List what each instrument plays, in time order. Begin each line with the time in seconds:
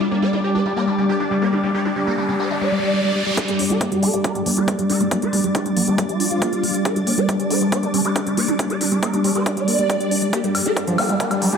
Already playing: synth drone G3 D4, ambient pad G3 G4 D5 D6, riser
0.00 acid bass G3, digital synth lead D4
0.11 acid bass A#3, digital synth lead D4
0.22 acid bass G3, digital synth lead D5
0.33 acid bass G3, digital synth lead D4
0.44 digital synth lead D4, acid bass G4
0.55 acid bass D4, digital synth lead C5
0.66 acid bass G3, digital synth lead D4
0.77 acid bass A#3, digital synth lead D5
0.87 acid bass G3, digital synth lead D4
0.98 acid bass G3, digital synth lead D4
1.09 acid bass G4, digital synth lead D5
1.20 acid bass D4, digital synth lead D4
1.31 acid bass G3, digital synth lead D4
1.42 acid bass A#3, digital synth lead D5
1.53 acid bass G3, digital synth lead D4
1.64 acid bass G3, digital synth lead D4
1.74 acid bass G4, digital synth lead D5
1.85 acid bass D4, digital synth lead D4
1.96 acid bass G3, digital synth lead D4
2.07 acid bass A#3, digital synth lead A#4
2.18 acid bass G3, digital synth lead D4
2.29 acid bass G3, digital synth lead D4
2.40 acid bass G4, digital synth lead C5
2.51 acid bass D4, digital synth lead D4
2.61 acid bass G3, digital synth lead D5
2.72 acid bass G3
2.83 acid bass G3
2.94 acid bass G3, closed hi-hat
3.05 acid bass G3
3.16 acid bass G3
3.27 acid bass G3
3.37 acid bass G3, synth drone G3 D4, digital synth lead G4, kick, closed hi-hat
3.48 digital synth lead G3, acid bass G4, closed hi-hat
3.59 digital synth lead G3, acid bass D4, open hi-hat
3.70 acid bass G3, digital synth lead A#4, closed hi-hat
3.81 digital synth lead G3, acid bass A#3, kick, closed hi-hat
3.92 acid bass G3, digital synth lead G3, closed hi-hat
4.03 acid bass G3, digital synth lead A4, open hi-hat
4.14 digital synth lead G3, acid bass G4, closed hi-hat
4.24 acid bass D4, digital synth lead A#4, kick, closed hi-hat
4.35 digital synth lead G3, acid bass G3, closed hi-hat
4.46 digital synth lead G3, acid bass A#3, open hi-hat
4.57 acid bass G3, digital synth lead C5, closed hi-hat
4.68 digital synth lead G3, acid bass G3, kick, closed hi-hat
4.79 digital synth lead G3, acid bass G4, closed hi-hat
4.90 acid bass D4, digital synth lead A#4, open hi-hat
5.00 acid bass G3, digital synth lead G3, closed hi-hat
5.11 digital synth lead G3, acid bass A#3, kick, closed hi-hat
5.22 acid bass G3, digital synth lead C5, closed hi-hat
5.33 digital synth lead G3, acid bass G3, open hi-hat
5.44 digital synth lead G3, acid bass G4, closed hi-hat
5.55 acid bass D4, digital synth lead G4, kick, closed hi-hat
5.66 digital synth lead G3, acid bass G3, closed hi-hat
5.76 digital synth lead G3, acid bass A#3, open hi-hat
5.87 acid bass G3, digital synth lead D#4, closed hi-hat
5.98 digital synth lead G3, acid bass G3, kick, closed hi-hat
6.09 digital synth lead F4, acid bass G4, closed hi-hat
6.20 acid bass D4, open hi-hat
6.31 acid bass G3, closed hi-hat
6.42 acid bass A#3, kick, closed hi-hat
6.53 acid bass G3, closed hi-hat
6.64 acid bass G3, open hi-hat
6.74 acid bass G4, closed hi-hat
6.85 acid bass D4, digital synth lead A#4, kick, closed hi-hat
6.96 acid bass G3, digital synth lead D4, closed hi-hat
7.07 acid bass A#3, digital synth lead D4, open hi-hat
7.18 acid bass G3, digital synth lead D5, closed hi-hat
7.29 digital synth lead D4, kick, closed hi-hat
7.40 digital synth lead D4, acid bass G4, closed hi-hat
7.50 acid bass D4, digital synth lead C5, open hi-hat
7.61 acid bass G3, digital synth lead D4, closed hi-hat
7.72 acid bass A#3, digital synth lead D5, kick, closed hi-hat
7.83 acid bass G3, digital synth lead D4, closed hi-hat
7.94 acid bass G3, digital synth lead D4, open hi-hat
8.05 acid bass G4, digital synth lead D5, closed hi-hat
8.16 digital synth lead D4, acid bass D4, kick, closed hi-hat
8.27 acid bass G3, digital synth lead D4, closed hi-hat
8.37 acid bass A#3, digital synth lead D5, open hi-hat
8.48 acid bass G3, digital synth lead D4, closed hi-hat
8.59 acid bass G3, digital synth lead D4, kick, closed hi-hat
8.70 acid bass G4, digital synth lead D5, closed hi-hat
8.81 digital synth lead D4, acid bass D4, open hi-hat
8.92 acid bass G3, digital synth lead D4, closed hi-hat
9.03 acid bass A#3, digital synth lead A#4, kick, closed hi-hat
9.13 acid bass G3, digital synth lead D4, closed hi-hat
9.24 acid bass G3, digital synth lead D4, open hi-hat
9.35 acid bass G4, digital synth lead C5, closed hi-hat
9.46 acid bass D4, digital synth lead D4, kick, closed hi-hat
9.57 acid bass G3, digital synth lead D5, closed hi-hat
9.68 acid bass A#3, open hi-hat
9.79 acid bass G3, closed hi-hat
9.90 acid bass G3, kick, closed hi-hat
10.00 acid bass G4, closed hi-hat
10.11 acid bass D4, open hi-hat
10.22 acid bass G3, closed hi-hat
10.33 acid bass A#3, digital synth lead G4, kick, closed hi-hat, riser
10.44 acid bass G3, digital synth lead G3, closed hi-hat
10.55 acid bass G3, digital synth lead G3, open hi-hat, high woodblock
10.66 acid bass G4, digital synth lead A#4, closed hi-hat
10.77 digital synth lead G3, acid bass D4, kick, closed hi-hat
10.87 acid bass F3, digital synth lead G3, closed hi-hat
10.98 acid bass A#3, digital synth lead A4, open hi-hat, high woodblock
11.09 digital synth lead G3, acid bass G3, closed hi-hat
11.20 acid bass A#3, digital synth lead G4, kick, closed hi-hat
11.31 digital synth lead G3, acid bass G3, closed hi-hat, high woodblock
11.42 digital synth lead G3, acid bass G3, open hi-hat
11.53 acid bass G4, digital synth lead A#4, closed hi-hat